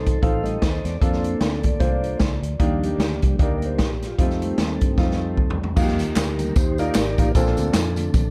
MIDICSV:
0, 0, Header, 1, 6, 480
1, 0, Start_track
1, 0, Tempo, 396040
1, 1230, Time_signature, 4, 2, 24, 8
1, 10064, End_track
2, 0, Start_track
2, 0, Title_t, "Grand piano"
2, 0, Program_c, 0, 0
2, 272, Note_on_c, 0, 65, 62
2, 276, Note_on_c, 0, 60, 65
2, 277, Note_on_c, 0, 63, 64
2, 277, Note_on_c, 0, 69, 79
2, 757, Note_off_c, 0, 65, 0
2, 759, Note_off_c, 0, 60, 0
2, 759, Note_off_c, 0, 63, 0
2, 759, Note_off_c, 0, 69, 0
2, 1234, Note_on_c, 0, 58, 66
2, 1237, Note_on_c, 0, 62, 59
2, 1238, Note_on_c, 0, 69, 71
2, 1239, Note_on_c, 0, 65, 55
2, 1717, Note_off_c, 0, 58, 0
2, 1719, Note_off_c, 0, 62, 0
2, 1719, Note_off_c, 0, 69, 0
2, 1720, Note_off_c, 0, 65, 0
2, 2178, Note_on_c, 0, 72, 73
2, 2181, Note_on_c, 0, 65, 66
2, 2183, Note_on_c, 0, 58, 70
2, 2183, Note_on_c, 0, 60, 49
2, 2239, Note_on_c, 0, 62, 62
2, 2253, Note_off_c, 0, 60, 0
2, 2669, Note_off_c, 0, 72, 0
2, 2671, Note_off_c, 0, 65, 0
2, 2672, Note_off_c, 0, 58, 0
2, 2699, Note_off_c, 0, 62, 0
2, 3144, Note_on_c, 0, 58, 87
2, 3148, Note_on_c, 0, 63, 76
2, 3149, Note_on_c, 0, 62, 78
2, 3149, Note_on_c, 0, 67, 81
2, 3150, Note_on_c, 0, 51, 69
2, 3632, Note_off_c, 0, 58, 0
2, 3635, Note_off_c, 0, 62, 0
2, 3635, Note_off_c, 0, 63, 0
2, 3635, Note_off_c, 0, 67, 0
2, 3858, Note_off_c, 0, 51, 0
2, 4107, Note_on_c, 0, 58, 70
2, 4111, Note_on_c, 0, 63, 60
2, 4112, Note_on_c, 0, 62, 60
2, 4112, Note_on_c, 0, 67, 78
2, 4594, Note_off_c, 0, 58, 0
2, 4596, Note_off_c, 0, 63, 0
2, 4596, Note_off_c, 0, 67, 0
2, 4597, Note_off_c, 0, 62, 0
2, 5070, Note_on_c, 0, 60, 63
2, 5070, Note_on_c, 0, 63, 59
2, 5071, Note_on_c, 0, 65, 73
2, 5077, Note_on_c, 0, 55, 54
2, 5124, Note_on_c, 0, 57, 67
2, 5140, Note_off_c, 0, 55, 0
2, 5556, Note_off_c, 0, 60, 0
2, 5556, Note_off_c, 0, 63, 0
2, 5557, Note_off_c, 0, 65, 0
2, 5583, Note_off_c, 0, 57, 0
2, 6035, Note_on_c, 0, 65, 77
2, 6036, Note_on_c, 0, 57, 67
2, 6037, Note_on_c, 0, 60, 56
2, 6037, Note_on_c, 0, 63, 61
2, 6518, Note_off_c, 0, 65, 0
2, 6519, Note_off_c, 0, 57, 0
2, 6519, Note_off_c, 0, 60, 0
2, 6519, Note_off_c, 0, 63, 0
2, 6985, Note_on_c, 0, 58, 87
2, 6985, Note_on_c, 0, 66, 78
2, 6991, Note_on_c, 0, 65, 76
2, 6992, Note_on_c, 0, 63, 82
2, 7044, Note_on_c, 0, 67, 91
2, 7054, Note_off_c, 0, 66, 0
2, 7473, Note_off_c, 0, 58, 0
2, 7476, Note_off_c, 0, 63, 0
2, 7476, Note_off_c, 0, 65, 0
2, 7503, Note_off_c, 0, 67, 0
2, 8228, Note_on_c, 0, 63, 63
2, 8228, Note_on_c, 0, 65, 68
2, 8229, Note_on_c, 0, 58, 73
2, 8234, Note_on_c, 0, 70, 81
2, 8433, Note_off_c, 0, 63, 0
2, 8433, Note_off_c, 0, 65, 0
2, 8434, Note_off_c, 0, 58, 0
2, 8436, Note_off_c, 0, 70, 0
2, 8708, Note_on_c, 0, 63, 56
2, 8711, Note_on_c, 0, 58, 65
2, 8711, Note_on_c, 0, 65, 59
2, 8712, Note_on_c, 0, 70, 72
2, 8810, Note_off_c, 0, 63, 0
2, 8811, Note_off_c, 0, 58, 0
2, 8811, Note_off_c, 0, 65, 0
2, 8812, Note_off_c, 0, 70, 0
2, 8913, Note_on_c, 0, 60, 72
2, 8914, Note_on_c, 0, 58, 72
2, 8915, Note_on_c, 0, 62, 67
2, 8920, Note_on_c, 0, 46, 60
2, 8920, Note_on_c, 0, 69, 77
2, 9396, Note_off_c, 0, 60, 0
2, 9397, Note_off_c, 0, 58, 0
2, 9397, Note_off_c, 0, 62, 0
2, 9400, Note_off_c, 0, 69, 0
2, 9622, Note_off_c, 0, 46, 0
2, 10064, End_track
3, 0, Start_track
3, 0, Title_t, "Tonewheel organ"
3, 0, Program_c, 1, 16
3, 0, Note_on_c, 1, 63, 62
3, 0, Note_on_c, 1, 69, 59
3, 0, Note_on_c, 1, 72, 96
3, 230, Note_off_c, 1, 72, 0
3, 264, Note_off_c, 1, 69, 0
3, 266, Note_on_c, 1, 72, 66
3, 272, Note_on_c, 1, 77, 93
3, 278, Note_on_c, 1, 69, 68
3, 513, Note_off_c, 1, 63, 0
3, 515, Note_off_c, 1, 69, 0
3, 522, Note_off_c, 1, 72, 0
3, 522, Note_on_c, 1, 55, 45
3, 526, Note_on_c, 1, 75, 87
3, 530, Note_on_c, 1, 69, 65
3, 533, Note_on_c, 1, 57, 45
3, 533, Note_on_c, 1, 63, 49
3, 537, Note_on_c, 1, 72, 67
3, 557, Note_off_c, 1, 77, 0
3, 716, Note_off_c, 1, 55, 0
3, 722, Note_off_c, 1, 57, 0
3, 722, Note_off_c, 1, 63, 0
3, 1031, Note_off_c, 1, 75, 0
3, 1034, Note_on_c, 1, 74, 78
3, 1172, Note_off_c, 1, 69, 0
3, 1176, Note_off_c, 1, 72, 0
3, 1219, Note_off_c, 1, 74, 0
3, 1238, Note_on_c, 1, 58, 54
3, 1242, Note_on_c, 1, 60, 45
3, 1251, Note_on_c, 1, 69, 56
3, 1254, Note_on_c, 1, 62, 54
3, 1254, Note_on_c, 1, 72, 86
3, 1689, Note_off_c, 1, 72, 0
3, 1739, Note_on_c, 1, 70, 71
3, 1857, Note_off_c, 1, 70, 0
3, 1953, Note_off_c, 1, 58, 0
3, 1955, Note_off_c, 1, 60, 0
3, 1961, Note_off_c, 1, 62, 0
3, 1999, Note_off_c, 1, 69, 0
3, 2007, Note_on_c, 1, 58, 56
3, 2010, Note_on_c, 1, 74, 80
3, 2013, Note_on_c, 1, 69, 58
3, 2196, Note_on_c, 1, 60, 44
3, 2198, Note_on_c, 1, 57, 49
3, 2203, Note_on_c, 1, 62, 51
3, 2442, Note_off_c, 1, 60, 0
3, 2443, Note_off_c, 1, 57, 0
3, 2446, Note_off_c, 1, 62, 0
3, 2634, Note_off_c, 1, 74, 0
3, 2908, Note_off_c, 1, 58, 0
3, 2911, Note_off_c, 1, 69, 0
3, 3185, Note_on_c, 1, 53, 52
3, 3188, Note_on_c, 1, 55, 47
3, 3198, Note_on_c, 1, 62, 53
3, 3440, Note_off_c, 1, 62, 0
3, 3447, Note_on_c, 1, 67, 99
3, 3455, Note_on_c, 1, 62, 58
3, 3456, Note_on_c, 1, 58, 61
3, 3509, Note_off_c, 1, 53, 0
3, 3510, Note_off_c, 1, 55, 0
3, 3937, Note_on_c, 1, 53, 42
3, 3939, Note_off_c, 1, 62, 0
3, 3940, Note_on_c, 1, 55, 42
3, 3954, Note_on_c, 1, 62, 47
3, 4073, Note_off_c, 1, 67, 0
3, 4106, Note_off_c, 1, 53, 0
3, 4107, Note_off_c, 1, 55, 0
3, 4115, Note_off_c, 1, 62, 0
3, 4149, Note_on_c, 1, 70, 71
3, 4151, Note_on_c, 1, 67, 67
3, 4158, Note_on_c, 1, 74, 98
3, 4329, Note_off_c, 1, 74, 0
3, 4344, Note_on_c, 1, 74, 63
3, 4353, Note_off_c, 1, 58, 0
3, 4400, Note_off_c, 1, 74, 0
3, 4431, Note_on_c, 1, 72, 86
3, 4599, Note_off_c, 1, 72, 0
3, 4616, Note_off_c, 1, 70, 0
3, 4630, Note_on_c, 1, 70, 86
3, 4746, Note_off_c, 1, 70, 0
3, 4933, Note_on_c, 1, 65, 70
3, 5042, Note_off_c, 1, 67, 0
3, 5091, Note_off_c, 1, 65, 0
3, 5112, Note_on_c, 1, 67, 86
3, 5113, Note_on_c, 1, 60, 61
3, 5118, Note_on_c, 1, 63, 63
3, 5365, Note_on_c, 1, 55, 48
3, 5374, Note_on_c, 1, 57, 46
3, 5376, Note_off_c, 1, 63, 0
3, 5390, Note_on_c, 1, 63, 55
3, 5585, Note_off_c, 1, 67, 0
3, 5591, Note_off_c, 1, 63, 0
3, 5598, Note_off_c, 1, 60, 0
3, 5604, Note_on_c, 1, 69, 72
3, 5606, Note_on_c, 1, 63, 50
3, 5613, Note_on_c, 1, 60, 52
3, 6766, Note_off_c, 1, 69, 0
3, 6767, Note_off_c, 1, 63, 0
3, 6770, Note_off_c, 1, 60, 0
3, 6951, Note_off_c, 1, 55, 0
3, 6955, Note_off_c, 1, 57, 0
3, 7000, Note_on_c, 1, 51, 52
3, 7023, Note_on_c, 1, 55, 50
3, 7029, Note_on_c, 1, 58, 60
3, 7336, Note_off_c, 1, 51, 0
3, 7348, Note_off_c, 1, 55, 0
3, 7351, Note_off_c, 1, 58, 0
3, 7468, Note_on_c, 1, 67, 52
3, 7470, Note_on_c, 1, 63, 57
3, 7473, Note_on_c, 1, 70, 76
3, 7730, Note_on_c, 1, 51, 46
3, 7742, Note_on_c, 1, 55, 46
3, 7742, Note_on_c, 1, 58, 57
3, 7920, Note_off_c, 1, 51, 0
3, 7927, Note_off_c, 1, 55, 0
3, 7927, Note_off_c, 1, 58, 0
3, 7932, Note_off_c, 1, 63, 0
3, 7933, Note_off_c, 1, 67, 0
3, 7947, Note_on_c, 1, 63, 61
3, 7947, Note_on_c, 1, 67, 61
3, 7955, Note_on_c, 1, 72, 97
3, 7965, Note_off_c, 1, 70, 0
3, 8223, Note_off_c, 1, 67, 0
3, 8237, Note_on_c, 1, 67, 66
3, 8238, Note_off_c, 1, 72, 0
3, 8246, Note_on_c, 1, 70, 64
3, 8248, Note_on_c, 1, 74, 116
3, 8859, Note_off_c, 1, 63, 0
3, 8867, Note_off_c, 1, 67, 0
3, 8872, Note_off_c, 1, 70, 0
3, 8873, Note_off_c, 1, 74, 0
3, 8916, Note_on_c, 1, 69, 65
3, 8917, Note_on_c, 1, 65, 68
3, 8930, Note_on_c, 1, 72, 98
3, 9178, Note_off_c, 1, 72, 0
3, 9190, Note_on_c, 1, 60, 65
3, 9195, Note_off_c, 1, 69, 0
3, 9202, Note_on_c, 1, 62, 70
3, 9209, Note_on_c, 1, 69, 88
3, 9666, Note_on_c, 1, 50, 56
3, 9670, Note_off_c, 1, 60, 0
3, 9675, Note_on_c, 1, 57, 53
3, 9685, Note_on_c, 1, 60, 62
3, 9824, Note_off_c, 1, 65, 0
3, 9964, Note_off_c, 1, 50, 0
3, 9968, Note_off_c, 1, 57, 0
3, 9973, Note_off_c, 1, 60, 0
3, 10064, Note_off_c, 1, 62, 0
3, 10064, Note_off_c, 1, 69, 0
3, 10064, End_track
4, 0, Start_track
4, 0, Title_t, "French horn section"
4, 0, Program_c, 2, 60
4, 0, Note_on_c, 2, 53, 79
4, 0, Note_on_c, 2, 60, 72
4, 0, Note_on_c, 2, 63, 78
4, 0, Note_on_c, 2, 69, 67
4, 1187, Note_off_c, 2, 60, 0
4, 1190, Note_off_c, 2, 63, 0
4, 1192, Note_off_c, 2, 53, 0
4, 1216, Note_on_c, 2, 58, 73
4, 1221, Note_on_c, 2, 74, 88
4, 1222, Note_on_c, 2, 53, 80
4, 3098, Note_off_c, 2, 69, 0
4, 3126, Note_off_c, 2, 53, 0
4, 3157, Note_on_c, 2, 55, 73
4, 5025, Note_off_c, 2, 58, 0
4, 5027, Note_off_c, 2, 74, 0
4, 5055, Note_off_c, 2, 55, 0
4, 5074, Note_on_c, 2, 57, 73
4, 5076, Note_on_c, 2, 60, 77
4, 5077, Note_on_c, 2, 51, 80
4, 5083, Note_on_c, 2, 53, 69
4, 6973, Note_off_c, 2, 57, 0
4, 6974, Note_off_c, 2, 60, 0
4, 6975, Note_off_c, 2, 51, 0
4, 6977, Note_off_c, 2, 53, 0
4, 10064, End_track
5, 0, Start_track
5, 0, Title_t, "Fingered electric bass"
5, 0, Program_c, 3, 33
5, 0, Note_on_c, 3, 36, 82
5, 197, Note_off_c, 3, 36, 0
5, 272, Note_on_c, 3, 33, 97
5, 679, Note_off_c, 3, 33, 0
5, 756, Note_on_c, 3, 39, 71
5, 989, Note_off_c, 3, 39, 0
5, 1025, Note_on_c, 3, 40, 64
5, 1198, Note_off_c, 3, 40, 0
5, 1231, Note_on_c, 3, 41, 90
5, 1638, Note_off_c, 3, 41, 0
5, 1703, Note_on_c, 3, 38, 70
5, 2113, Note_off_c, 3, 38, 0
5, 2189, Note_on_c, 3, 36, 89
5, 2597, Note_off_c, 3, 36, 0
5, 2667, Note_on_c, 3, 37, 77
5, 2904, Note_off_c, 3, 37, 0
5, 2937, Note_on_c, 3, 38, 73
5, 3113, Note_off_c, 3, 38, 0
5, 3147, Note_on_c, 3, 39, 90
5, 3556, Note_off_c, 3, 39, 0
5, 3616, Note_on_c, 3, 38, 77
5, 3857, Note_off_c, 3, 38, 0
5, 3913, Note_on_c, 3, 36, 86
5, 4082, Note_off_c, 3, 36, 0
5, 4112, Note_on_c, 3, 38, 95
5, 4595, Note_off_c, 3, 38, 0
5, 4595, Note_on_c, 3, 34, 76
5, 5001, Note_off_c, 3, 34, 0
5, 5074, Note_on_c, 3, 41, 86
5, 5481, Note_off_c, 3, 41, 0
5, 5550, Note_on_c, 3, 39, 72
5, 5786, Note_off_c, 3, 39, 0
5, 5838, Note_on_c, 3, 43, 78
5, 6006, Note_off_c, 3, 43, 0
5, 6031, Note_on_c, 3, 41, 83
5, 6513, Note_off_c, 3, 41, 0
5, 6513, Note_on_c, 3, 39, 73
5, 6920, Note_off_c, 3, 39, 0
5, 6988, Note_on_c, 3, 41, 104
5, 7259, Note_off_c, 3, 41, 0
5, 7259, Note_on_c, 3, 39, 82
5, 7435, Note_off_c, 3, 39, 0
5, 7467, Note_on_c, 3, 38, 94
5, 7876, Note_off_c, 3, 38, 0
5, 7950, Note_on_c, 3, 39, 95
5, 8358, Note_off_c, 3, 39, 0
5, 8432, Note_on_c, 3, 32, 80
5, 8667, Note_off_c, 3, 32, 0
5, 8704, Note_on_c, 3, 33, 74
5, 8877, Note_off_c, 3, 33, 0
5, 8908, Note_on_c, 3, 34, 105
5, 9144, Note_off_c, 3, 34, 0
5, 9184, Note_on_c, 3, 38, 79
5, 9357, Note_off_c, 3, 38, 0
5, 9382, Note_on_c, 3, 41, 84
5, 9793, Note_off_c, 3, 41, 0
5, 9864, Note_on_c, 3, 34, 106
5, 10064, Note_off_c, 3, 34, 0
5, 10064, End_track
6, 0, Start_track
6, 0, Title_t, "Drums"
6, 76, Note_on_c, 9, 42, 69
6, 80, Note_on_c, 9, 36, 85
6, 197, Note_off_c, 9, 42, 0
6, 202, Note_off_c, 9, 36, 0
6, 275, Note_on_c, 9, 36, 103
6, 276, Note_on_c, 9, 42, 73
6, 396, Note_off_c, 9, 36, 0
6, 397, Note_off_c, 9, 42, 0
6, 550, Note_on_c, 9, 42, 54
6, 671, Note_off_c, 9, 42, 0
6, 750, Note_on_c, 9, 38, 100
6, 754, Note_on_c, 9, 36, 90
6, 757, Note_on_c, 9, 42, 79
6, 871, Note_off_c, 9, 38, 0
6, 875, Note_off_c, 9, 36, 0
6, 879, Note_off_c, 9, 42, 0
6, 1027, Note_on_c, 9, 38, 35
6, 1028, Note_on_c, 9, 42, 65
6, 1148, Note_off_c, 9, 38, 0
6, 1149, Note_off_c, 9, 42, 0
6, 1230, Note_on_c, 9, 36, 98
6, 1233, Note_on_c, 9, 42, 82
6, 1351, Note_off_c, 9, 36, 0
6, 1354, Note_off_c, 9, 42, 0
6, 1365, Note_on_c, 9, 38, 36
6, 1486, Note_off_c, 9, 38, 0
6, 1504, Note_on_c, 9, 42, 60
6, 1625, Note_off_c, 9, 42, 0
6, 1702, Note_on_c, 9, 42, 81
6, 1704, Note_on_c, 9, 38, 104
6, 1824, Note_off_c, 9, 42, 0
6, 1825, Note_off_c, 9, 38, 0
6, 1978, Note_on_c, 9, 42, 64
6, 1990, Note_on_c, 9, 36, 86
6, 2099, Note_off_c, 9, 42, 0
6, 2111, Note_off_c, 9, 36, 0
6, 2181, Note_on_c, 9, 42, 71
6, 2186, Note_on_c, 9, 36, 103
6, 2303, Note_off_c, 9, 42, 0
6, 2307, Note_off_c, 9, 36, 0
6, 2466, Note_on_c, 9, 42, 55
6, 2587, Note_off_c, 9, 42, 0
6, 2661, Note_on_c, 9, 38, 103
6, 2668, Note_on_c, 9, 42, 80
6, 2669, Note_on_c, 9, 36, 86
6, 2782, Note_off_c, 9, 38, 0
6, 2789, Note_off_c, 9, 42, 0
6, 2791, Note_off_c, 9, 36, 0
6, 2947, Note_on_c, 9, 42, 69
6, 3068, Note_off_c, 9, 42, 0
6, 3146, Note_on_c, 9, 42, 82
6, 3148, Note_on_c, 9, 36, 98
6, 3268, Note_off_c, 9, 42, 0
6, 3269, Note_off_c, 9, 36, 0
6, 3433, Note_on_c, 9, 42, 63
6, 3554, Note_off_c, 9, 42, 0
6, 3631, Note_on_c, 9, 42, 77
6, 3632, Note_on_c, 9, 38, 96
6, 3752, Note_off_c, 9, 42, 0
6, 3754, Note_off_c, 9, 38, 0
6, 3905, Note_on_c, 9, 42, 71
6, 3914, Note_on_c, 9, 36, 83
6, 4026, Note_off_c, 9, 42, 0
6, 4036, Note_off_c, 9, 36, 0
6, 4112, Note_on_c, 9, 42, 68
6, 4113, Note_on_c, 9, 36, 106
6, 4233, Note_off_c, 9, 42, 0
6, 4234, Note_off_c, 9, 36, 0
6, 4387, Note_on_c, 9, 42, 53
6, 4508, Note_off_c, 9, 42, 0
6, 4588, Note_on_c, 9, 38, 102
6, 4595, Note_on_c, 9, 36, 85
6, 4595, Note_on_c, 9, 42, 77
6, 4709, Note_off_c, 9, 38, 0
6, 4716, Note_off_c, 9, 36, 0
6, 4716, Note_off_c, 9, 42, 0
6, 4875, Note_on_c, 9, 38, 36
6, 4876, Note_on_c, 9, 42, 58
6, 4996, Note_off_c, 9, 38, 0
6, 4997, Note_off_c, 9, 42, 0
6, 5073, Note_on_c, 9, 36, 93
6, 5073, Note_on_c, 9, 42, 82
6, 5194, Note_off_c, 9, 36, 0
6, 5194, Note_off_c, 9, 42, 0
6, 5209, Note_on_c, 9, 38, 33
6, 5330, Note_off_c, 9, 38, 0
6, 5354, Note_on_c, 9, 42, 63
6, 5476, Note_off_c, 9, 42, 0
6, 5547, Note_on_c, 9, 42, 79
6, 5549, Note_on_c, 9, 38, 91
6, 5668, Note_off_c, 9, 42, 0
6, 5670, Note_off_c, 9, 38, 0
6, 5829, Note_on_c, 9, 42, 67
6, 5837, Note_on_c, 9, 36, 87
6, 5950, Note_off_c, 9, 42, 0
6, 5958, Note_off_c, 9, 36, 0
6, 6030, Note_on_c, 9, 38, 48
6, 6033, Note_on_c, 9, 36, 104
6, 6151, Note_off_c, 9, 38, 0
6, 6154, Note_off_c, 9, 36, 0
6, 6194, Note_on_c, 9, 38, 45
6, 6315, Note_off_c, 9, 38, 0
6, 6514, Note_on_c, 9, 36, 79
6, 6635, Note_off_c, 9, 36, 0
6, 6669, Note_on_c, 9, 43, 88
6, 6791, Note_off_c, 9, 43, 0
6, 6830, Note_on_c, 9, 43, 73
6, 6951, Note_off_c, 9, 43, 0
6, 6987, Note_on_c, 9, 49, 82
6, 6988, Note_on_c, 9, 54, 78
6, 6990, Note_on_c, 9, 36, 104
6, 7108, Note_off_c, 9, 49, 0
6, 7109, Note_off_c, 9, 54, 0
6, 7111, Note_off_c, 9, 36, 0
6, 7126, Note_on_c, 9, 38, 38
6, 7247, Note_off_c, 9, 38, 0
6, 7261, Note_on_c, 9, 54, 54
6, 7268, Note_on_c, 9, 42, 73
6, 7382, Note_off_c, 9, 54, 0
6, 7390, Note_off_c, 9, 42, 0
6, 7469, Note_on_c, 9, 39, 88
6, 7469, Note_on_c, 9, 54, 86
6, 7471, Note_on_c, 9, 42, 91
6, 7473, Note_on_c, 9, 38, 104
6, 7590, Note_off_c, 9, 39, 0
6, 7590, Note_off_c, 9, 54, 0
6, 7592, Note_off_c, 9, 42, 0
6, 7594, Note_off_c, 9, 38, 0
6, 7741, Note_on_c, 9, 42, 68
6, 7745, Note_on_c, 9, 54, 50
6, 7862, Note_off_c, 9, 42, 0
6, 7866, Note_off_c, 9, 54, 0
6, 7947, Note_on_c, 9, 54, 72
6, 7950, Note_on_c, 9, 42, 70
6, 7952, Note_on_c, 9, 36, 106
6, 8068, Note_off_c, 9, 54, 0
6, 8071, Note_off_c, 9, 42, 0
6, 8073, Note_off_c, 9, 36, 0
6, 8219, Note_on_c, 9, 54, 52
6, 8229, Note_on_c, 9, 42, 55
6, 8340, Note_off_c, 9, 54, 0
6, 8350, Note_off_c, 9, 42, 0
6, 8418, Note_on_c, 9, 39, 100
6, 8418, Note_on_c, 9, 54, 105
6, 8424, Note_on_c, 9, 38, 113
6, 8431, Note_on_c, 9, 42, 85
6, 8539, Note_off_c, 9, 39, 0
6, 8539, Note_off_c, 9, 54, 0
6, 8545, Note_off_c, 9, 38, 0
6, 8552, Note_off_c, 9, 42, 0
6, 8701, Note_on_c, 9, 54, 52
6, 8706, Note_on_c, 9, 36, 88
6, 8710, Note_on_c, 9, 42, 66
6, 8823, Note_off_c, 9, 54, 0
6, 8827, Note_off_c, 9, 36, 0
6, 8831, Note_off_c, 9, 42, 0
6, 8904, Note_on_c, 9, 42, 88
6, 8907, Note_on_c, 9, 36, 104
6, 8909, Note_on_c, 9, 54, 72
6, 9025, Note_off_c, 9, 42, 0
6, 9028, Note_off_c, 9, 36, 0
6, 9030, Note_off_c, 9, 54, 0
6, 9037, Note_on_c, 9, 38, 34
6, 9158, Note_off_c, 9, 38, 0
6, 9174, Note_on_c, 9, 54, 57
6, 9181, Note_on_c, 9, 42, 64
6, 9295, Note_off_c, 9, 54, 0
6, 9302, Note_off_c, 9, 42, 0
6, 9371, Note_on_c, 9, 42, 87
6, 9373, Note_on_c, 9, 38, 104
6, 9385, Note_on_c, 9, 39, 88
6, 9385, Note_on_c, 9, 54, 87
6, 9492, Note_off_c, 9, 42, 0
6, 9494, Note_off_c, 9, 38, 0
6, 9506, Note_off_c, 9, 39, 0
6, 9506, Note_off_c, 9, 54, 0
6, 9650, Note_on_c, 9, 54, 46
6, 9659, Note_on_c, 9, 42, 74
6, 9771, Note_off_c, 9, 54, 0
6, 9780, Note_off_c, 9, 42, 0
6, 9863, Note_on_c, 9, 54, 77
6, 9866, Note_on_c, 9, 36, 102
6, 9866, Note_on_c, 9, 42, 75
6, 9984, Note_off_c, 9, 54, 0
6, 9987, Note_off_c, 9, 36, 0
6, 9987, Note_off_c, 9, 42, 0
6, 10064, End_track
0, 0, End_of_file